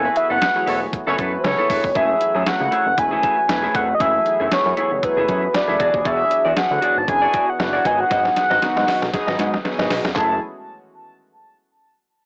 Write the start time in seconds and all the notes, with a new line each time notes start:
Already playing: E3 F#3 A3 B3 F#4 G#5
0.04 A3 E4 F#4 G#4 B4, muted clean electric guitar stroke
0.16 E5, muted clean electric guitar stroke, closed hi-hat
0.30 F#1 B3 E4 A4 F#5
0.42 snare, closed hi-hat
0.56 A3 E4 F#4 G#4 C#5, muted clean electric guitar stroke
0.67 E1 B3 C#4 E4 A4 C#5, open hi-hat
0.81 muted clean electric guitar stroke
0.93 muted clean electric guitar stroke, kick, closed hi-hat
1.07 F#1 A3 B3 C#4 E4 F#4 G#4 A4 B4 C#5
1.18 F#2 B3 E4 A4, kick, closed hi-hat
1.33 muted clean electric guitar stroke
1.39 C5
1.44 C#2 C#4 A4 C#5, muted clean electric guitar stroke, snare, closed hi-hat
1.58 B3 E4 A4
1.70 E1 B3 E4 A4, kick, open hi-hat
1.84 F1, muted clean electric guitar stroke, kick
1.95 F#1 E3 F#3 A3 C#4 E4 F#4 G#4 E5, kick, closed hi-hat
2.09 muted clean electric guitar stroke
2.21 muted clean electric guitar stroke, closed hi-hat
2.35 F#2 A3 E4 G#4
2.46 F#3 A3 E4 F#4 F#5, snare, closed hi-hat
2.60 C#2, muted clean electric guitar stroke
2.72 A3 E4 G#4, closed hi-hat
2.86 F#1, muted clean electric guitar stroke
2.97 E1 F#3 A3 E4 B4 G#5, muted clean electric guitar stroke, kick, closed hi-hat
3.11 A3 E4 G#4
3.23 A3 E4 G#4, kick, closed hi-hat
3.37 muted clean electric guitar stroke
3.49 E1 F#3 A3 E4 B4, muted clean electric guitar stroke, snare, closed hi-hat
3.63 A3 E4 G#4
3.74 F1 A3 E4 G#4 F#5, kick, closed hi-hat
3.89 muted clean electric guitar stroke
3.95 D#5
4.00 F#1 F#3 A3 B3 E4 G#4 E5, kick, closed hi-hat
4.15 muted clean electric guitar stroke
4.26 muted clean electric guitar stroke, closed hi-hat
4.40 F#1 A3 E4 G#4
4.51 F#2 F#3 A3 E4 G#4 C#5, snare, closed hi-hat
4.66 F#2, muted clean electric guitar stroke
4.77 A3 E4 G#4, closed hi-hat
4.92 F#1, muted clean electric guitar stroke
5.02 F#3 G#3 E4 G#4 B4, muted clean electric guitar stroke, kick, closed hi-hat
5.09 A3
5.17 F#1 A3 E4 G#4
5.28 F#2 A3 E4 G#4, kick, closed hi-hat
5.43 muted clean electric guitar stroke
5.54 F#3 A3 E4 B4 D5, muted clean electric guitar stroke, snare, closed hi-hat
5.68 F#1 A3 E4 G#4
5.79 E1 F#3 B3 D4 E4 F#4 G#4 D5, kick, closed hi-hat
5.94 D#1, muted clean electric guitar stroke, kick
6.05 E1 F#4 G#4 D5 E5, kick, closed hi-hat
6.19 muted clean electric guitar stroke
6.31 muted clean electric guitar stroke, closed hi-hat
6.45 E2 F#4 G#4 D5
6.57 F#3 D4 E4 G#4 F#5, snare, closed hi-hat
6.71 D2, muted clean electric guitar stroke
6.82 F#4 G#4 D5, closed hi-hat
6.96 G#1 A5, muted clean electric guitar stroke
7.07 F#1 F#3 D4 E4 G#4 G#5, muted clean electric guitar stroke, kick, closed hi-hat
7.22 F#4 G#4 D5
7.33 F#4 G#4 D5, kick, closed hi-hat
7.47 F#5, muted clean electric guitar stroke
7.59 F#1 F#3 D4 E4 F#4, muted clean electric guitar stroke, snare, closed hi-hat
7.73 F#4 G#4 D5
7.84 G#1 D#3 F#3 B3 D#4 F#4 G#4 B4 D#5 G#5, kick, closed hi-hat
7.99 F#5, muted clean electric guitar stroke
8.10 G#1 F#4 B4 D#5, kick, snare, closed hi-hat
8.25 muted clean electric guitar stroke, snare
8.36 muted clean electric guitar stroke, snare, closed hi-hat
8.50 G#1 F#4 B4 D#5, snare
8.62 G#2 F#3 B3 D#4 F#4, snare, closed hi-hat
8.76 G#2, muted clean electric guitar stroke, snare
8.87 F#4 B4 D#5, snare, open hi-hat
9.02 B1, muted clean electric guitar stroke, snare
9.13 F#3 B3 D#4 G#4, muted clean electric guitar stroke, kick, snare, closed hi-hat
9.27 G#1 F#4 B4 D#5, snare
9.38 G#2 F#4 B4 D#5, snare, closed hi-hat
9.53 muted clean electric guitar stroke, snare
9.64 F#3 B3 D#4 G#4, muted clean electric guitar stroke, snare, closed hi-hat
9.79 G#1 F#4 B4 D#5, snare
9.90 B1 F#4 B4 D#5, snare, open hi-hat
10.04 F1, muted clean electric guitar stroke, snare
10.15 F#1 E3 F#3 G#3 A3 C#4 E4 F#4 G#4 A5, kick, clap